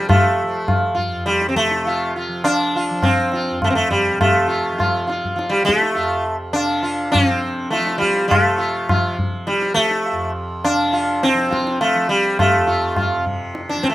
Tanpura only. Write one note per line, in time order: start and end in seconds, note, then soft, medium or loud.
0.00 1.06 F2 soft
0.00 1.66 C3 medium
0.00 0.43 F3 medium
0.43 2.28 F3 medium
1.07 3.50 F2 medium
1.66 4.11 C3 medium
2.28 2.91 F3 medium
2.91 4.73 F3 medium
3.51 5.96 F2 medium
4.12 6.56 C3 soft
4.73 5.35 F3 medium
5.35 7.17 F3 medium
5.96 10.12 F2 medium
6.57 8.31 C3 soft
7.17 7.80 F3 medium
7.80 8.90 F3 medium
8.31 10.73 C3 medium
8.90 9.52 F3 medium
9.52 11.34 F3 medium
10.12 12.55 F2 medium
10.74 13.17 C3 medium
11.34 11.95 F3 medium
11.95 13.77 F3 medium
12.55 13.95 F2 medium
13.17 13.95 C3 medium
13.77 13.95 F3 medium